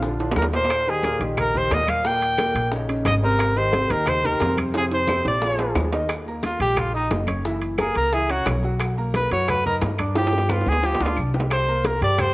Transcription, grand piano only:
0.03 0.17 D3 medium
0.03 0.17 D4 medium
0.03 0.17 F4 medium
0.20 0.47 D3 medium
0.20 0.47 D4 medium
0.20 0.48 F4 medium
0.53 0.81 A#2 medium
0.53 0.81 A#3 medium
0.53 0.81 A#4 medium
0.87 1.01 D#3 medium
0.87 1.01 D#4 medium
0.87 1.01 G4 medium
1.04 1.18 A#2 medium
1.04 1.18 A#3 medium
1.04 1.18 A#4 medium
1.21 1.48 D#3 medium
1.21 1.49 D#4 medium
1.21 1.49 G4 medium
1.54 1.68 D#3 medium
1.54 1.68 D#4 medium
1.54 1.68 G4 medium
1.71 1.99 A#2 medium
1.71 1.99 A#3 medium
1.71 1.99 A#4 medium
2.05 2.32 A#2 medium
2.05 2.32 A#3 medium
2.05 2.33 A#4 medium
2.38 2.66 A#2 medium
2.38 2.66 A#3 medium
2.38 2.66 A#4 medium
2.71 2.86 C#3 medium
2.71 2.86 C#4 medium
2.71 2.86 D#4 medium
2.89 3.16 C#3 medium
2.89 3.16 C#4 medium
2.89 3.17 D#4 medium
3.23 3.51 C3 medium
3.23 3.51 C4 medium
3.23 3.51 C5 medium
3.56 3.70 D#3 medium
3.56 3.70 D#4 medium
3.56 3.71 G4 medium
3.74 3.87 C3 medium
3.74 3.87 C4 medium
3.74 3.87 C5 medium
3.91 4.18 D#3 medium
3.91 4.18 D#4 medium
3.91 4.18 G4 medium
4.24 4.38 D#3 medium
4.24 4.38 D#4 medium
4.24 4.38 G4 medium
4.41 4.69 C3 medium
4.41 4.69 C4 medium
4.41 4.69 C5 medium
4.75 5.02 C3 medium
4.75 5.02 C4 medium
4.75 5.03 C5 medium
5.08 5.36 C3 medium
5.08 5.36 C4 medium
5.08 5.36 C5 medium
5.43 5.56 F3 medium
5.43 5.56 F4 medium
5.43 5.57 G#4 medium
5.60 5.87 F3 medium
5.60 5.87 F4 medium
5.60 5.87 G#4 medium
5.93 6.07 D#3 medium
5.93 6.07 D#4 medium
5.93 6.07 D#5 medium
6.27 6.55 A#3 medium
6.27 6.55 A#4 medium
6.27 6.55 A#5 medium
6.60 6.88 G3 medium
6.60 6.88 G4 medium
6.60 6.88 G5 medium
6.94 7.22 D#4 medium
6.94 7.22 D#5 medium
6.94 7.22 D#6 medium
7.27 7.42 C#4 medium
7.27 7.42 C#5 medium
7.27 7.42 C#6 medium
7.45 7.73 E3 medium
7.45 7.73 E4 medium
7.45 7.73 E5 medium
7.79 8.07 A#3 medium
7.79 8.07 A#4 medium
7.79 8.07 A#5 medium
8.13 8.27 E3 medium
8.13 8.27 E4 medium
8.13 8.27 E5 medium
8.30 8.57 C#4 medium
8.30 8.58 C#5 medium
8.30 8.58 C#6 medium
8.64 8.91 F#3 medium
8.64 8.92 F#4 medium
8.64 8.92 F#5 medium
8.98 9.25 A#3 medium
8.98 9.25 A#4 medium
8.98 9.25 A#5 medium
9.32 9.59 F#3 medium
9.32 9.59 F#4 medium
9.32 9.59 F#5 medium
9.65 9.93 D#4 medium
9.65 9.93 D#5 medium
9.65 9.93 D#6 medium
9.99 10.13 D4 medium
9.99 10.13 D5 medium
9.99 10.14 D6 medium
10.16 10.44 F3 medium
10.16 10.44 F4 medium
10.16 10.44 F5 medium
10.49 10.77 B3 medium
10.49 10.77 B4 medium
10.49 10.77 B5 medium
10.83 10.97 F3 medium
10.83 10.97 F4 medium
10.83 10.97 F5 medium
11.01 11.28 D4 medium
11.01 11.29 D5 medium
11.01 11.29 D6 medium
11.34 11.62 G3 medium
11.34 11.62 G4 medium
11.34 11.63 G5 medium
11.68 11.96 A#3 medium
11.68 11.96 A#4 medium
11.68 11.96 A#5 medium
12.02 12.30 G3 medium
12.02 12.30 G4 medium
12.02 12.30 G5 medium

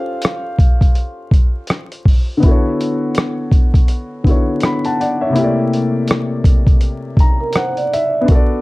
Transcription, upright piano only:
0.00 2.37 C#4 medium
0.00 2.38 F4 medium
0.00 2.40 G4 medium
0.00 2.42 A4 medium
0.00 2.43 C5 medium
2.37 4.19 D3 medium
2.37 4.21 B3 medium
2.43 4.22 E4 medium
2.43 4.24 F#4 medium
2.48 4.25 A4 medium
2.48 4.27 C#5 medium
4.24 5.35 D3 medium
4.24 5.36 B3 medium
4.24 5.34 E4 medium
4.28 5.37 F#4 medium
4.28 5.38 A4 medium
4.28 4.65 C#5 medium
4.65 4.84 B5 medium
4.85 4.99 F#5 medium
4.85 4.99 A5 medium
5.00 5.21 D5 medium
5.00 5.20 F#5 medium
5.21 5.56 C#5 medium
5.21 5.56 E5 medium
5.30 8.22 C3 medium
5.30 8.23 A#3 medium
5.35 8.24 E4 medium
5.35 8.26 G4 medium
5.41 8.27 A3 medium
5.41 8.29 D5 medium
7.20 7.54 A#5 medium
7.56 7.90 F#5 medium
7.93 8.27 E5 medium
8.21 8.61 B3 medium
8.21 8.61 D4 medium
8.28 8.61 F#4 medium
8.28 8.61 A4 medium
8.35 8.61 D5 medium

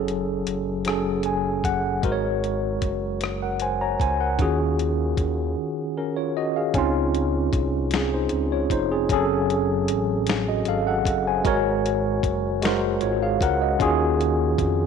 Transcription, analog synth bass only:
0.00 0.43 F#1 loud
0.48 1.61 F#1 medium
1.65 2.00 F#1 medium
2.04 2.78 G#1 loud
2.83 3.96 F#1 medium
4.01 4.41 C#2 medium
4.40 5.14 D#2 loud
5.18 5.55 D#2 medium
6.75 7.49 C#2 loud
7.54 8.27 C2 medium
8.32 8.67 C#2 medium
8.71 9.06 F1 medium
9.10 9.91 F#1 loud
9.89 10.63 A1 medium
10.67 11.02 G#1 loud
11.06 11.41 F#1 loud
11.46 12.20 G#1 loud
12.24 12.98 F#1 medium
13.03 13.38 G#1 loud
13.41 13.76 C#2 medium
13.81 14.55 D#2 loud
14.59 14.86 F2 loud

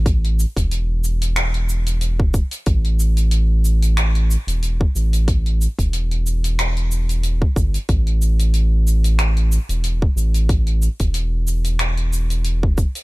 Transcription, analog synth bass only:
0.00 0.45 A1 medium
0.57 2.41 E1 loud
2.67 4.37 A1 medium
4.47 4.86 E1 medium
4.95 5.67 A1 medium
5.79 7.22 E1 loud
7.23 7.44 E1 loud
7.56 7.77 G1 loud
7.89 9.58 A1 medium
9.69 10.07 E1 medium
10.16 10.88 A1 medium
11.00 12.84 E1 loud

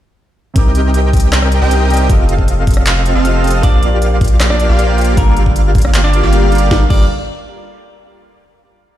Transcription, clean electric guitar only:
3.63 3.84 D4 medium
3.63 3.84 D5 loud
4.50 4.71 D4 medium
4.50 4.71 D5 medium
5.17 5.38 A#3 medium
5.17 5.38 A#4 medium
6.04 6.25 D4 medium
6.04 6.25 D5 loud
6.71 6.82 D5 medium
6.90 7.05 D5 medium

